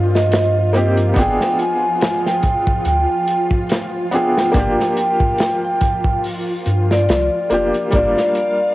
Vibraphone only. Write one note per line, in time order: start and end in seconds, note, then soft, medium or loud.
0.15 1.02 D#5 medium
1.18 1.56 G5 medium
1.60 2.18 G#5 loud
2.26 2.81 G5 medium
2.88 3.45 G5 medium
4.14 4.90 G5 medium
4.99 5.57 G5 medium
5.65 6.19 G5 medium
6.92 7.79 D5 medium
7.95 8.32 D5 loud
8.37 8.75 D5 medium